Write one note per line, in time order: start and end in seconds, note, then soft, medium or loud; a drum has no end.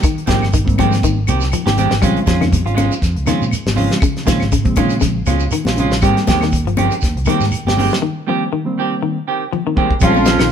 0.03 0.23 D#3 medium
0.03 kick medium
0.03 closed hi-hat medium
0.03 claves medium
0.03 shekere medium
0.18 closed hi-hat soft
0.26 0.40 G#2 medium
0.26 0.43 D#3 medium
0.26 0.47 D#3 medium
0.26 0.48 F3 medium
0.26 0.47 G3 medium
0.26 0.44 G#3 medium
0.26 0.48 A#3 medium
0.26 0.44 C4 medium
0.26 0.48 C4 medium
0.26 0.44 G4 medium
0.26 kick medium
0.26 snare medium
0.26 closed hi-hat medium
0.26 high conga medium
0.26 shekere medium
0.41 0.64 G1 medium
0.41 snare soft
0.41 claves medium
0.41 shekere soft
0.53 0.73 D#3 medium
0.53 kick medium
0.53 closed hi-hat medium
0.53 shekere medium
0.64 1.01 G#2 medium
0.64 1.17 D#3 medium
0.64 1.17 G3 medium
0.64 1.17 A#3 medium
0.64 1.18 C4 medium
0.64 kick medium
0.69 closed hi-hat soft
0.78 0.94 D#3 medium
0.78 0.98 F3 medium
0.78 0.94 G#3 medium
0.78 0.94 C4 medium
0.78 0.94 G4 medium
0.78 kick medium
0.78 closed hi-hat medium
0.78 high conga medium
0.78 low conga medium
0.78 claves medium
0.78 shekere soft
0.91 snare soft
0.91 closed hi-hat soft
0.91 shekere medium
1.03 1.26 G#1 medium
1.03 1.23 D#3 medium
1.03 kick medium
1.03 closed hi-hat medium
1.03 shekere medium
1.27 1.51 C2 medium
1.27 1.44 D#3 medium
1.27 1.44 C4 medium
1.27 1.44 G4 medium
1.27 closed hi-hat medium
1.27 high conga medium
1.27 claves medium
1.27 shekere medium
1.41 snare soft
1.41 shekere medium
1.52 1.64 F3 medium
1.52 muted fingered electric bass stroke soft
1.52 closed hi-hat medium
1.52 claves medium
1.52 shekere medium
1.64 1.89 G#1 medium
1.64 1.86 D#3 medium
1.64 1.71 A#3 medium
1.64 1.72 C4 medium
1.64 1.77 C4 soft
1.64 1.77 G4 soft
1.64 snare medium
1.64 closed hi-hat soft
1.64 high conga medium
1.75 1.90 D#3 medium
1.75 1.94 D#3 medium
1.75 1.91 G3 medium
1.75 1.94 G#3 medium
1.75 1.91 A#3 medium
1.75 1.91 C4 medium
1.75 1.94 C4 medium
1.75 1.94 G4 medium
1.75 closed hi-hat soft
1.75 low conga medium
1.75 shekere soft
1.90 2.01 G#1 medium
1.90 snare medium
1.90 closed hi-hat soft
1.90 shekere soft
2.02 2.15 A#1 medium
2.02 2.54 C#3 medium
2.02 2.54 F3 medium
2.02 2.21 G3 medium
2.02 2.18 G#3 medium
2.02 2.55 G#3 medium
2.02 2.55 C4 medium
2.02 2.19 C#4 medium
2.02 2.19 F4 medium
2.02 kick medium
2.02 closed hi-hat medium
2.02 claves medium
2.02 shekere medium
2.16 closed hi-hat soft
2.26 2.63 F2 medium
2.26 2.38 F3 medium
2.26 2.43 G#3 medium
2.26 2.43 C#4 medium
2.26 2.43 F4 medium
2.26 kick medium
2.26 snare medium
2.26 closed hi-hat soft
2.26 high conga medium
2.26 shekere medium
2.41 2.61 D#3 medium
2.41 snare soft
2.41 closed hi-hat soft
2.41 high conga medium
2.41 low conga medium
2.41 claves medium
2.41 shekere soft
2.52 kick medium
2.52 closed hi-hat medium
2.52 high conga medium
2.52 shekere medium
2.65 2.89 G#1 medium
2.65 2.74 C#4 soft
2.65 2.75 F4 medium
2.65 muted clean electric guitar stroke medium
2.65 closed hi-hat soft
2.75 2.92 G#3 medium
2.75 2.92 C#4 medium
2.75 2.93 F4 medium
2.75 closed hi-hat soft
2.75 high conga medium
2.75 low conga medium
2.75 claves medium
2.75 shekere soft
2.92 closed hi-hat soft
2.92 shekere medium
3.02 3.15 F2 loud
3.02 kick medium
3.02 snare soft
3.02 closed hi-hat medium
3.02 shekere medium
3.16 3.26 C#2 medium
3.16 closed hi-hat soft
3.25 3.52 C#3 medium
3.25 3.47 D#3 medium
3.25 3.52 F3 medium
3.25 3.52 G#3 medium
3.25 3.43 G#3 medium
3.25 3.53 C4 medium
3.25 3.43 C#4 medium
3.25 3.43 F4 medium
3.25 snare soft
3.25 closed hi-hat soft
3.25 high conga medium
3.25 claves medium
3.25 shekere medium
3.41 3.52 A#2 medium
3.41 shekere medium
3.51 closed hi-hat medium
3.51 claves medium
3.51 shekere medium
3.66 3.89 G#1 medium
3.66 snare medium
3.66 closed hi-hat soft
3.66 high conga medium
3.74 4.01 C#3 medium
3.74 4.02 F3 medium
3.74 4.02 G#3 medium
3.74 3.92 G#3 medium
3.74 4.02 C4 medium
3.74 3.93 C#4 medium
3.74 3.93 F4 medium
3.74 open hi-hat medium
3.74 low conga medium
3.74 shekere soft
3.91 snare medium
3.91 closed hi-hat soft
3.91 shekere soft
4.00 4.22 C#3 medium
4.00 kick medium
4.00 closed hi-hat medium
4.00 claves medium
4.00 shekere medium
4.17 snare soft
4.17 closed hi-hat soft
4.25 4.39 A#2 medium
4.25 4.46 C#3 medium
4.25 4.46 D#3 medium
4.25 4.46 F3 medium
4.25 4.46 G#3 medium
4.25 4.47 C4 medium
4.25 4.43 C#4 medium
4.25 4.43 F4 medium
4.25 muted clean electric guitar stroke medium
4.25 kick medium
4.25 snare medium
4.25 closed hi-hat soft
4.25 high conga medium
4.25 shekere medium
4.40 4.64 G#1 medium
4.40 snare soft
4.40 claves medium
4.40 shekere soft
4.52 4.72 C#3 medium
4.52 kick medium
4.52 closed hi-hat medium
4.52 shekere medium
4.63 4.99 A#2 medium
4.63 5.16 C#3 medium
4.63 5.16 F3 medium
4.63 5.16 G#3 medium
4.63 5.17 C4 medium
4.63 kick medium
4.63 closed hi-hat soft
4.76 4.96 D#3 medium
4.76 4.93 G#3 medium
4.76 4.93 C#4 medium
4.76 4.93 F4 medium
4.76 kick medium
4.76 closed hi-hat medium
4.76 high conga medium
4.76 low conga medium
4.76 claves medium
4.76 shekere soft
4.89 closed hi-hat soft
4.89 shekere medium
5.01 5.25 A#1 medium
5.01 5.21 C#3 medium
5.01 kick medium
5.01 snare soft
5.01 closed hi-hat medium
5.01 shekere medium
5.26 5.50 C#2 medium
5.26 5.43 G#3 medium
5.26 5.43 C#4 medium
5.26 5.43 F4 medium
5.26 closed hi-hat medium
5.26 high conga medium
5.26 claves medium
5.26 shekere medium
5.40 shekere medium
5.51 5.63 D#3 medium
5.51 muted fingered electric bass stroke soft
5.51 closed hi-hat medium
5.51 claves medium
5.51 shekere medium
5.65 5.89 A#1 medium
5.65 5.71 G#3 medium
5.65 5.71 C4 medium
5.65 5.78 C#4 soft
5.65 5.78 F4 soft
5.65 snare medium
5.65 closed hi-hat soft
5.65 high conga medium
5.76 5.91 C#3 medium
5.76 5.92 F3 medium
5.76 5.92 G#3 medium
5.76 5.94 G#3 medium
5.76 5.92 C4 medium
5.76 5.94 C#4 medium
5.76 5.94 F4 medium
5.76 closed hi-hat soft
5.76 low conga medium
5.76 shekere soft
5.90 6.01 A#1 medium
5.90 snare medium
5.90 closed hi-hat soft
5.90 shekere soft
6.01 6.15 G#1 loud
6.01 6.54 D#3 medium
6.01 6.18 D#3 medium
6.01 6.54 G3 medium
6.01 6.22 G3 medium
6.01 6.18 G#3 medium
6.01 6.54 A#3 medium
6.01 6.54 C4 medium
6.01 6.18 C4 medium
6.01 6.18 G4 medium
6.01 kick medium
6.01 closed hi-hat medium
6.01 claves medium
6.01 shekere medium
6.17 snare soft
6.17 closed hi-hat soft
6.27 6.63 D#2 loud
6.27 6.43 D#3 medium
6.27 6.38 F3 medium
6.27 6.43 G#3 medium
6.27 6.44 C4 medium
6.27 6.44 G4 medium
6.27 kick medium
6.27 snare medium
6.27 closed hi-hat medium
6.27 high conga medium
6.27 shekere medium
6.41 6.62 D#3 medium
6.41 snare soft
6.41 closed hi-hat soft
6.41 claves medium
6.41 shekere soft
6.52 kick medium
6.52 closed hi-hat medium
6.52 shekere medium
6.65 6.89 G1 medium
6.65 6.86 F3 medium
6.65 closed hi-hat soft
6.77 6.93 D#3 medium
6.77 6.93 G#3 medium
6.77 6.93 C4 medium
6.77 6.94 G4 medium
6.77 closed hi-hat soft
6.77 high conga medium
6.77 low conga medium
6.77 claves medium
6.77 shekere soft
6.91 closed hi-hat soft
6.91 shekere medium
7.01 7.15 D#2 medium
7.01 kick medium
7.01 snare soft
7.01 closed hi-hat medium
7.01 shekere medium
7.16 7.26 C2 medium
7.16 closed hi-hat soft
7.25 7.52 D#3 medium
7.25 7.47 D#3 medium
7.25 7.43 D#3 medium
7.25 7.52 G3 medium
7.25 7.43 G#3 medium
7.25 7.53 A#3 medium
7.25 7.44 C4 medium
7.25 7.53 D#4 medium
7.25 7.44 G4 medium
7.25 closed hi-hat medium
7.25 high conga medium
7.25 claves medium
7.25 shekere medium
7.40 7.51 G#2 medium
7.40 snare soft
7.40 shekere medium
7.51 closed hi-hat medium
7.51 claves medium
7.51 shekere medium
7.65 7.88 G1 medium
7.65 7.77 G#3 soft
7.65 7.77 C4 soft
7.65 7.77 G4 medium
7.65 snare medium
7.65 closed hi-hat soft
7.65 high conga medium
7.75 8.02 D#3 medium
7.75 7.93 D#3 medium
7.75 8.02 G3 medium
7.75 7.93 G#3 medium
7.75 8.03 A#3 medium
7.75 8.03 C4 medium
7.75 7.94 C4 medium
7.75 7.94 G4 medium
7.75 open hi-hat medium
7.75 low conga medium
7.75 shekere soft
7.89 snare medium
7.89 closed hi-hat soft
7.89 shekere soft
8.02 8.21 D#3 medium
8.27 8.43 D#3 medium
8.27 8.47 D#3 medium
8.27 8.48 F3 medium
8.27 8.47 G3 medium
8.27 8.47 A#3 medium
8.27 8.43 C4 medium
8.27 8.47 C4 medium
8.27 8.43 G4 medium
8.27 muted clean electric guitar stroke medium
8.53 8.72 D#3 medium
8.65 9.16 D#3 medium
8.65 9.17 G3 medium
8.65 9.17 A#3 medium
8.65 9.17 C4 medium
8.78 8.93 D#3 medium
8.78 8.94 C4 medium
8.78 8.94 G4 medium
9.02 9.22 D#3 medium
9.28 9.43 D#3 medium
9.28 9.43 C4 medium
9.28 9.43 G4 medium
9.52 9.63 F3 medium
9.52 high tom soft
9.65 9.86 D#3 medium
9.65 9.71 A#3 medium
9.65 9.72 C4 medium
9.75 9.90 D#3 medium
9.75 9.92 D#3 medium
9.75 9.90 G3 medium
9.75 9.93 G#3 medium
9.75 9.90 A#3 medium
9.75 9.91 C4 loud
9.75 9.93 C4 medium
9.75 9.93 G4 medium
9.75 kick medium
9.91 kick medium
10.00 10.37 A#1 loud
10.00 10.27 F3 medium
10.00 10.48 F3 medium
10.00 10.22 G3 medium
10.00 10.27 G#3 medium
10.00 10.18 G#3 medium
10.00 10.27 C4 medium
10.00 10.28 C#4 medium
10.00 10.18 C#4 medium
10.00 10.18 F4 medium
10.00 kick medium
10.00 closed hi-hat medium
10.00 claves medium
10.00 shekere medium
10.04 10.50 F2 medium
10.04 10.49 F4 loud
10.14 high conga medium
10.14 shekere soft
10.26 10.38 F3 medium
10.26 10.43 G#3 medium
10.26 10.43 C#4 medium
10.26 10.43 F4 medium
10.26 snare medium
10.26 closed hi-hat soft
10.26 high conga medium
10.26 shekere medium
10.39 10.52 A#1 medium
10.39 10.52 D#3 medium
10.39 snare medium
10.39 claves medium
10.39 shekere soft